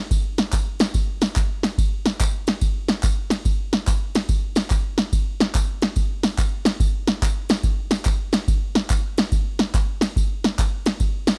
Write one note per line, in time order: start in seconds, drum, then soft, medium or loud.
0.11 kick loud
0.11 ride medium
0.11 tambourine medium
0.38 snare loud
0.38 ride medium
0.38 tambourine soft
0.52 kick medium
0.52 clap medium
0.52 ride medium
0.52 tambourine loud
0.80 snare loud
0.80 ride medium
0.80 tambourine medium
0.94 kick loud
0.94 ride medium
0.94 tambourine medium
1.21 snare loud
1.21 ride medium
1.21 tambourine medium
1.36 kick loud
1.36 clap medium
1.36 ride medium
1.36 tambourine medium
1.63 snare loud
1.63 ride medium
1.63 tambourine medium
1.78 kick loud
1.78 ride medium
1.78 tambourine medium
2.06 snare loud
2.06 ride medium
2.06 tambourine soft
2.20 kick loud
2.20 clap loud
2.20 ride medium
2.20 tambourine loud
2.47 snare loud
2.47 ride medium
2.47 tambourine medium
2.61 kick loud
2.61 ride medium
2.61 tambourine medium
2.88 snare loud
2.88 ride medium
2.88 tambourine medium
3.03 kick loud
3.03 clap medium
3.03 ride medium
3.03 tambourine medium
3.30 snare loud
3.30 ride medium
3.30 tambourine medium
3.45 kick loud
3.45 ride medium
3.45 tambourine medium
3.73 snare loud
3.73 ride soft
3.73 tambourine soft
3.87 kick loud
3.87 clap medium
3.87 ride medium
3.87 tambourine medium
4.15 snare loud
4.15 ride medium
4.15 tambourine medium
4.29 kick loud
4.29 ride medium
4.29 tambourine medium
4.55 snare loud
4.55 ride medium
4.55 tambourine medium
4.70 kick loud
4.70 clap medium
4.70 ride medium
4.70 tambourine medium
4.98 snare loud
4.98 ride medium
4.98 tambourine soft
5.13 kick loud
5.13 ride medium
5.13 tambourine medium
5.40 snare loud
5.40 ride medium
5.40 tambourine soft
5.55 kick loud
5.55 clap loud
5.55 ride medium
5.55 tambourine loud
5.82 snare loud
5.82 ride medium
5.82 tambourine medium
5.96 kick loud
5.96 ride medium
5.96 tambourine medium
6.23 snare loud
6.23 ride medium
6.23 tambourine medium
6.38 kick loud
6.38 clap medium
6.38 ride medium
6.38 tambourine medium
6.65 snare loud
6.65 ride medium
6.65 tambourine medium
6.80 kick loud
6.80 ride medium
6.80 tambourine medium
7.08 snare loud
7.08 ride medium
7.08 tambourine medium
7.22 kick medium
7.22 clap loud
7.22 ride medium
7.22 tambourine loud
7.49 snare loud
7.49 ride medium
7.49 tambourine medium
7.63 kick loud
7.63 ride medium
7.63 tambourine medium
7.91 snare loud
7.91 ride medium
7.91 tambourine medium
8.05 kick loud
8.05 clap medium
8.05 ride medium
8.05 tambourine medium
8.32 snare loud
8.32 ride medium
8.32 tambourine medium
8.48 kick loud
8.48 ride medium
8.48 tambourine medium
8.75 snare loud
8.75 ride medium
8.75 tambourine soft
8.90 kick loud
8.90 clap loud
8.90 ride medium
8.90 tambourine medium
9.18 snare loud
9.18 ride medium
9.18 tambourine medium
9.32 kick loud
9.32 ride medium
9.32 tambourine medium
9.59 snare loud
9.59 ride medium
9.59 tambourine medium
9.74 kick loud
9.74 clap medium
9.74 ride medium
9.74 tambourine medium
10.01 snare loud
10.01 ride medium
10.01 tambourine medium
10.16 kick loud
10.16 ride medium
10.16 tambourine medium
10.44 snare loud
10.44 ride medium
10.44 tambourine soft
10.59 kick loud
10.59 clap loud
10.59 ride medium
10.59 tambourine loud
10.86 snare loud
10.86 ride medium
10.86 tambourine medium
11.00 kick medium
11.00 ride medium
11.00 tambourine medium
11.27 snare loud
11.27 ride medium
11.27 tambourine medium